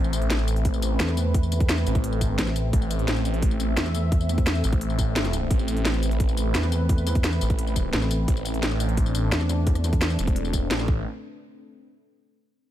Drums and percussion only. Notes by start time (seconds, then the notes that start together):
0.04 tambourine
0.13 closed hi-hat, tambourine
0.22 closed hi-hat
0.30 snare, closed hi-hat
0.39 tambourine
0.48 closed hi-hat, tambourine
0.56 closed hi-hat
0.65 kick, closed hi-hat
0.74 tambourine
0.82 closed hi-hat, tambourine
1.00 snare, closed hi-hat
1.08 cross-stick, snare, tambourine
1.17 closed hi-hat, tambourine
1.34 kick, closed hi-hat
1.43 tambourine
1.52 closed hi-hat, tambourine
1.60 kick, closed hi-hat
1.69 snare, closed hi-hat
1.78 cross-stick, tambourine
1.87 closed hi-hat, tambourine
1.95 kick, closed hi-hat
2.04 closed hi-hat
2.13 tambourine
2.21 kick, closed hi-hat, tambourine
2.38 snare, closed hi-hat
2.47 snare, tambourine
2.56 closed hi-hat, tambourine
2.73 kick, closed hi-hat
2.82 tambourine
2.91 closed hi-hat, tambourine
2.99 closed hi-hat
3.08 snare, closed hi-hat
3.17 tambourine
3.25 closed hi-hat, tambourine
3.34 closed hi-hat
3.42 kick, closed hi-hat
3.51 tambourine
3.60 closed hi-hat, tambourine
3.77 snare, closed hi-hat
3.86 cross-stick, snare, tambourine
3.95 closed hi-hat, tambourine
4.12 kick, closed hi-hat
4.21 tambourine
4.29 closed hi-hat, tambourine
4.38 kick, closed hi-hat
4.47 snare, closed hi-hat
4.55 cross-stick, tambourine
4.64 closed hi-hat, tambourine
4.73 kick, closed hi-hat
4.81 closed hi-hat
4.90 tambourine
4.99 kick, closed hi-hat, tambourine
5.16 snare, closed hi-hat
5.25 snare, closed hi-hat, tambourine
5.33 closed hi-hat, tambourine
5.51 kick, closed hi-hat
5.59 tambourine
5.68 closed hi-hat, tambourine
5.77 closed hi-hat
5.85 snare, closed hi-hat
5.94 tambourine
6.03 closed hi-hat, tambourine
6.11 closed hi-hat
6.20 kick, closed hi-hat
6.29 tambourine
6.37 closed hi-hat, tambourine
6.55 snare, closed hi-hat
6.63 cross-stick, snare, tambourine
6.72 closed hi-hat, tambourine
6.89 kick, closed hi-hat
6.98 tambourine
7.07 closed hi-hat, tambourine
7.15 kick, closed hi-hat
7.24 snare, closed hi-hat
7.33 cross-stick, tambourine
7.41 closed hi-hat, tambourine
7.50 kick, closed hi-hat
7.59 closed hi-hat
7.67 tambourine
7.76 kick, closed hi-hat, tambourine
7.93 snare, closed hi-hat
8.02 snare, tambourine
8.11 closed hi-hat, tambourine
8.28 kick, closed hi-hat
8.37 tambourine
8.45 closed hi-hat, tambourine
8.54 closed hi-hat
8.63 snare, closed hi-hat
8.71 tambourine
8.80 closed hi-hat, tambourine
8.89 closed hi-hat
8.97 kick, closed hi-hat
9.06 tambourine
9.15 closed hi-hat, tambourine
9.32 snare, closed hi-hat
9.41 cross-stick, snare, tambourine
9.49 closed hi-hat, tambourine
9.67 kick, closed hi-hat
9.75 cross-stick, closed hi-hat, tambourine
9.84 closed hi-hat, tambourine
9.93 kick, closed hi-hat
10.01 snare, closed hi-hat
10.10 cross-stick, tambourine
10.19 closed hi-hat, tambourine
10.27 kick, closed hi-hat
10.36 closed hi-hat
10.45 tambourine
10.53 kick, closed hi-hat, tambourine
10.71 snare, closed hi-hat
10.79 snare, tambourine
10.88 kick